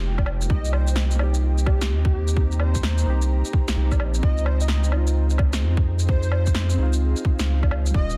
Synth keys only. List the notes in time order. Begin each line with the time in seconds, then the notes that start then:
Already playing: G#3 D#4 G4
0.46 A#3 D#4
0.54 G4
1.15 A#3
1.19 D#4 G4
2.32 A#3
2.36 D#4
2.40 G4
3.02 A#3 D#4
3.10 G4
3.74 A#3 D#4
3.78 G4
4.19 C4
4.23 D#4
4.27 F4
4.89 C4 D#4
4.97 F4
6.05 C4 D#4
6.13 F4
6.74 C4
6.78 D#4
6.82 F4
7.91 G3
7.95 C#4
7.99 F4